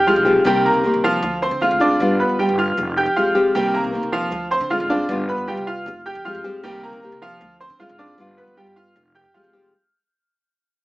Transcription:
Already playing: F2
0.06 F3 G#3 C4 F4 G4 F5 F6
0.16 B1
0.25 F3 G#3 C4 G4
0.44 C2 C3 D#3 G3 A#3 C4 G4 G5
0.65 A#3 A#4 A#5
0.74 C2
0.83 D#3 A#3 C4 G4
0.94 C2
1.04 F3 F4 F5
1.23 D2, muted nylon-string guitar stroke
1.42 C4 C5 C6
1.51 D3
1.61 D3 G#3 C4 F4 F5 F6
1.71 D2
1.80 G#3 C4 D4 F4 D5 D6
1.99 G1 G3 B3 F4
2.20 B3 B4 B5
2.29 G1
2.39 G3 B3 F4 G4 G5
2.49 G1
2.58 F4 F5 F6
2.77 F1, muted nylon-string guitar stroke
2.97 G4 G5 G6
3.06 F2
3.16 A#1 F3 G#3 C4 F4 G4 F5 F6
3.35 C2 F3 G#3 C4 G4
3.55 C2 C3 D#3 G3 A#3 C4 G4 G5
3.74 A#3 A#4 A#5
3.84 C2
3.93 D#3 A#3 C4 G4
4.03 C2
4.12 F3 F4 F5
4.31 D2, muted nylon-string guitar stroke
4.51 C4 C5 C6
4.61 D3
4.70 D3 G#3 C4 F4 F5 F6
4.80 G#1
4.89 G#3 C4 D4 F4 D5 D6
5.09 G1 G3 B3 F4
5.28 B3 B4 B5
5.38 G1
5.48 G3 B3 F4 G4 G5
5.57 C2
5.67 F4 F5 F6
5.86 F1, muted nylon-string guitar stroke
6.06 G4 G5 G6
6.15 F2
6.25 F3 G#3 C4 F4 G4 F5 F6
6.35 G2
6.44 F3 G#3 C4 G4
6.63 C2 C3 D#3 G3 A#3 C4 G4 G5
6.83 A#3 A#4 A#5
6.93 C2
7.02 D#3 A#3 C4 G4
7.12 C3
7.22 F3 F4 F5
7.41 D2, muted nylon-string guitar stroke
7.60 C4 C5 C6
7.70 D3
7.79 D3 G#3 C4 F4 F5 F6
7.89 G#1
7.98 G#3 C4 D4 F4 D5 D6
8.18 G1 G3 B3 F4
8.37 B3 B4 B5
8.47 G1
8.57 G3 B3 F4 G4 G5
8.67 G2
8.76 F4 F5 F6
8.96 F1, muted nylon-string guitar stroke
9.15 G4 G5 G6
9.25 F2
9.34 F3 G#3 C4 F4 G4 F5 F6
9.44 F1
9.53 F3 G#3 C4 G4

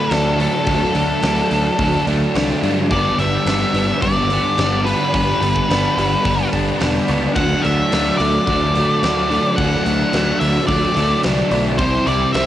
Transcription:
Already playing: F#3 A3 D4 B4
0.10 D2 D3 F#3 A3 D4, snare, open hi-hat
0.15 A4
0.38 F#3 A3 D4 A4, open hi-hat
0.66 D2 D3 F#3 A3 D4, kick, open hi-hat
0.94 D2 F#3 A3 D4, open hi-hat
1.22 D2 D3 F#3 A3 D4, snare, open hi-hat
1.50 D2 F#3 A3 D4, open hi-hat
1.78 D2 D3 F#3 A3 D4, kick, open hi-hat
2.07 D2 F#3 A3 D4, open hi-hat
2.35 C2 D3 F#3 A3 D4, snare, open hi-hat
2.63 G2 F#3 A3 D4, open hi-hat
2.91 G1 G2 D3 G3 B3 D4 D5, kick, open hi-hat
3.18 G1 G3 B3 D4 E5, open hi-hat
3.46 G1 D3 G3 B3, snare, open hi-hat
3.50 D4
3.74 G1 G3 B3 D4, open hi-hat
4.02 G1 G2 D3 G3 B3 D4 D5, kick, open hi-hat
4.30 G3 B3 D4, open hi-hat
4.58 G1 D3 G3 B3 D4, snare, open hi-hat
4.85 G3 B3 D4 B4, open hi-hat
5.12 G1 G2 D3 G3 B3 D4, kick, open hi-hat
5.42 G1 G3 B3 D4, open hi-hat
5.56 kick
5.69 G1 D3 G3 B3 D4, snare, open hi-hat
5.96 G1 G3 B3 D4, open hi-hat
6.24 G1 G2 D3 G3 B3 D4, kick, open hi-hat
6.52 G1 G3 B3 D4, kick, open hi-hat
6.79 E1 D3 G3 B3 D4, snare, open hi-hat
7.07 C#2 G3 B3 D4, open hi-hat
7.36 D2 D3 F#3 A3 D4 F#5, kick, open hi-hat
7.62 D2 A3 D4 E5, open hi-hat
7.66 F#3
7.92 D2 D3 F#3 A3 D4, snare, open hi-hat
8.17 D2 D4 D5, open hi-hat
8.22 F#3 A3
8.47 D2 D3 F#3 A3 D4, kick, open hi-hat
8.75 F#3 A3 D4, open hi-hat
9.03 D2 D3 F#3 A3 D4, snare, open hi-hat
9.30 F#3 A3 D4, open hi-hat
9.56 D2 D3 F#3 F#5, kick, open hi-hat
9.61 A3 D4
9.85 D2 F#3 A3 D4, open hi-hat
10.13 D2 D3 F#3 A3 D4, snare, open hi-hat
10.39 D2 A3 D4 E5, open hi-hat
10.43 F#3
10.67 D2 D3 F#3 A3 D5, kick, open hi-hat
10.72 D4
10.96 D2 F#3 A3 D4, open hi-hat
11.23 C2 D3 F#3 A3 D4, snare, open hi-hat
11.51 B1 F#3 A3 D4, open hi-hat
11.78 C2 C3 G3 C4 E4 C5, kick, open hi-hat
12.06 C2 G3 C4 E4 D5, open hi-hat
12.33 C2 C3 G3 C4 E5, snare, open hi-hat
12.37 E4

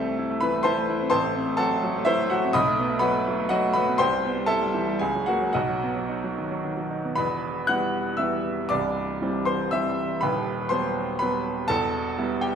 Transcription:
Already playing: C2 A3 C4 A4 E5 A5
0.09 A3
0.19 E4
0.30 A3
0.41 E3 B4 B5
0.54 A3
0.63 E3 C5 A5 C6
0.78 A3
0.90 E4
1.01 C4
1.10 A1 C5 A5 C6
1.23 A3
1.35 C4
1.46 A3
1.57 F#3 A4 F#5 A5
1.72 A3
1.83 F#3
1.96 A3
2.05 F#3 E4 C5 E5
2.19 A3
2.30 F#3 F#4 F#5
2.43 C4
2.53 B1 D#5 B5 D#6
2.67 A3
2.79 B3
2.90 A3
2.99 F#3 B4 F#5 B5
3.14 A3
3.28 F#3
3.40 A3
3.49 F#3 F#4 D#5 F#5
3.64 A3
3.73 F#3 B4 B5
3.88 B3
3.98 C2 C5 G5 C6
4.12 G3
4.25 B3
4.37 G3
4.46 E4 A4 E5 A5
4.61 G3
4.74 E3
4.87 G3
4.99 C#2 G#4 G#5
5.15 F#3
5.26 A#3 F#4 F#5
5.41 F#3
5.53 B1 F#4 D#5 F#5
5.69 F#3
5.83 B3
5.96 F#3
6.09 D#4
6.24 F#3
6.38 D#3
6.51 F#3
6.65 D#3
6.77 F#3
6.91 D#4
7.05 B3
7.16 E1 E2 B4 B5
7.67 E3 G3 B3 F#5 F#6
8.17 E3 G3 B3 E5 E6
8.69 C1 C2 D5 D6
9.22 E3 G3 C4
9.45 C5 C6
9.71 E3 G3 C4 E5 E6
10.21 D#1 D#2 B4 B5
10.69 F#3 B3 C5 C6
11.19 F#3 B3 B4 B5
11.68 E1 E2 A4 A5
12.18 G3 B3 E4
12.41 G4 G5

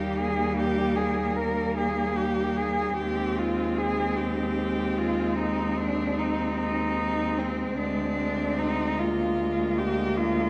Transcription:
Already playing: D#2 G3 A#3 G4
0.17 G#4
0.58 G4
0.96 G#4
1.36 A#4
1.77 G#4
2.17 G4
2.57 G#4
2.96 D#2 G#3 G4
3.00 C4
3.38 F4
3.78 G#4
4.17 G4
4.97 F4
5.37 D#4
5.77 D4
6.19 D#4
6.58 D#4
7.38 C4
7.77 D2 G#3 D4
8.59 D#4
8.98 A#3 F4
9.78 G4
10.17 F4

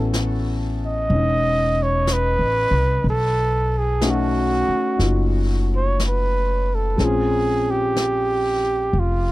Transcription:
Already playing: A1 B3 C#4 E4 F#4 A4
0.13 brush sweep, snare, hi-hat pedal
0.86 D#5
1.10 E1 C#4, brush sweep
1.15 D#4
1.83 C#5
2.07 brush sweep, snare, hi-hat pedal
2.13 B4
2.39 A1
2.71 C2
3.03 B1, brush sweep
3.10 A4
3.78 G#4
4.01 A3 C#4 D#4 F#4, brush sweep, snare, hi-hat pedal
4.10 F#4
4.68 muted upright bass stroke
4.98 F#1 D#4 F4, brush sweep, snare
5.76 C#5
5.99 brush sweep, snare, hi-hat pedal
6.07 B4
6.75 A4
6.97 A#1 G#3 C4 C#4, brush sweep, snare
7.02 F4 G#4
7.71 G4
7.96 brush sweep, snare, hi-hat pedal
8.93 F1, brush sweep
8.99 F4

